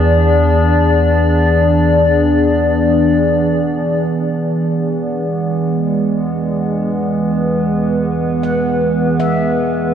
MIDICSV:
0, 0, Header, 1, 4, 480
1, 0, Start_track
1, 0, Tempo, 500000
1, 9542, End_track
2, 0, Start_track
2, 0, Title_t, "Handpan"
2, 0, Program_c, 0, 114
2, 8096, Note_on_c, 0, 78, 55
2, 8829, Note_on_c, 0, 76, 66
2, 9025, Note_off_c, 0, 78, 0
2, 9542, Note_off_c, 0, 76, 0
2, 9542, End_track
3, 0, Start_track
3, 0, Title_t, "Ambient pad"
3, 0, Program_c, 1, 92
3, 0, Note_on_c, 1, 52, 71
3, 0, Note_on_c, 1, 59, 69
3, 0, Note_on_c, 1, 62, 78
3, 0, Note_on_c, 1, 68, 68
3, 0, Note_on_c, 1, 74, 71
3, 4375, Note_on_c, 1, 56, 69
3, 5921, Note_on_c, 1, 71, 72
3, 6403, Note_off_c, 1, 74, 0
3, 6519, Note_off_c, 1, 62, 0
3, 9542, Note_off_c, 1, 52, 0
3, 9542, Note_off_c, 1, 56, 0
3, 9542, Note_off_c, 1, 59, 0
3, 9542, Note_off_c, 1, 68, 0
3, 9542, Note_off_c, 1, 71, 0
3, 9542, End_track
4, 0, Start_track
4, 0, Title_t, "Synth drone"
4, 0, Program_c, 2, 95
4, 0, Note_on_c, 2, 40, 84
4, 3920, Note_off_c, 2, 40, 0
4, 3957, Note_on_c, 2, 40, 75
4, 9542, Note_off_c, 2, 40, 0
4, 9542, End_track
0, 0, End_of_file